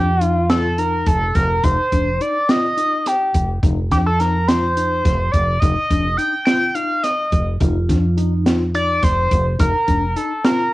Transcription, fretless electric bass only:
0, 0, Header, 1, 2, 480
1, 0, Start_track
1, 0, Tempo, 568720
1, 1381, Time_signature, 7, 3, 24, 8
1, 9060, End_track
2, 0, Start_track
2, 0, Title_t, "Fretless electric bass"
2, 0, Program_c, 0, 35
2, 0, Note_on_c, 0, 41, 77
2, 868, Note_off_c, 0, 41, 0
2, 900, Note_on_c, 0, 29, 82
2, 1118, Note_off_c, 0, 29, 0
2, 1142, Note_on_c, 0, 29, 84
2, 1359, Note_off_c, 0, 29, 0
2, 1383, Note_on_c, 0, 29, 92
2, 1491, Note_off_c, 0, 29, 0
2, 1623, Note_on_c, 0, 29, 73
2, 1839, Note_off_c, 0, 29, 0
2, 2823, Note_on_c, 0, 29, 83
2, 3040, Note_off_c, 0, 29, 0
2, 3062, Note_on_c, 0, 29, 90
2, 3303, Note_on_c, 0, 41, 75
2, 3316, Note_off_c, 0, 29, 0
2, 4228, Note_off_c, 0, 41, 0
2, 4263, Note_on_c, 0, 29, 84
2, 4480, Note_off_c, 0, 29, 0
2, 4502, Note_on_c, 0, 29, 86
2, 4719, Note_off_c, 0, 29, 0
2, 4743, Note_on_c, 0, 29, 90
2, 4850, Note_off_c, 0, 29, 0
2, 4984, Note_on_c, 0, 29, 81
2, 5200, Note_off_c, 0, 29, 0
2, 6181, Note_on_c, 0, 29, 82
2, 6398, Note_off_c, 0, 29, 0
2, 6422, Note_on_c, 0, 29, 97
2, 6662, Note_on_c, 0, 41, 70
2, 6674, Note_off_c, 0, 29, 0
2, 7586, Note_off_c, 0, 41, 0
2, 7620, Note_on_c, 0, 29, 86
2, 7837, Note_off_c, 0, 29, 0
2, 7861, Note_on_c, 0, 29, 87
2, 8077, Note_off_c, 0, 29, 0
2, 8099, Note_on_c, 0, 29, 101
2, 8208, Note_off_c, 0, 29, 0
2, 8340, Note_on_c, 0, 29, 80
2, 8557, Note_off_c, 0, 29, 0
2, 9060, End_track
0, 0, End_of_file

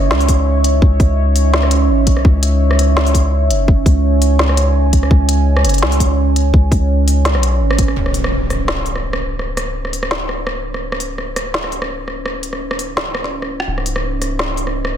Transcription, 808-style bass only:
0, 0, Header, 1, 2, 480
1, 0, Start_track
1, 0, Key_signature, 4, "minor"
1, 0, Tempo, 357143
1, 1106, Time_signature, 4, 2, 24, 8
1, 20121, End_track
2, 0, Start_track
2, 0, Title_t, "808-style bass"
2, 0, Program_c, 0, 38
2, 0, Note_on_c, 0, 30, 95
2, 140, Note_on_c, 0, 37, 98
2, 160, Note_off_c, 0, 30, 0
2, 1089, Note_off_c, 0, 37, 0
2, 1104, Note_on_c, 0, 37, 102
2, 2537, Note_on_c, 0, 32, 97
2, 2557, Note_off_c, 0, 37, 0
2, 2782, Note_on_c, 0, 35, 85
2, 2802, Note_off_c, 0, 32, 0
2, 3006, Note_off_c, 0, 35, 0
2, 3023, Note_on_c, 0, 37, 98
2, 4702, Note_on_c, 0, 30, 94
2, 4722, Note_off_c, 0, 37, 0
2, 5170, Note_off_c, 0, 30, 0
2, 5186, Note_on_c, 0, 37, 92
2, 6852, Note_off_c, 0, 37, 0
2, 6864, Note_on_c, 0, 37, 100
2, 7587, Note_on_c, 0, 30, 96
2, 7607, Note_off_c, 0, 37, 0
2, 7823, Note_on_c, 0, 37, 96
2, 7843, Note_off_c, 0, 30, 0
2, 8770, Note_off_c, 0, 37, 0
2, 8785, Note_on_c, 0, 37, 99
2, 9876, Note_on_c, 0, 35, 96
2, 9896, Note_off_c, 0, 37, 0
2, 10228, Note_on_c, 0, 32, 98
2, 10248, Note_off_c, 0, 35, 0
2, 10693, Note_off_c, 0, 32, 0
2, 10708, Note_on_c, 0, 25, 83
2, 18365, Note_off_c, 0, 25, 0
2, 18384, Note_on_c, 0, 25, 85
2, 20121, Note_off_c, 0, 25, 0
2, 20121, End_track
0, 0, End_of_file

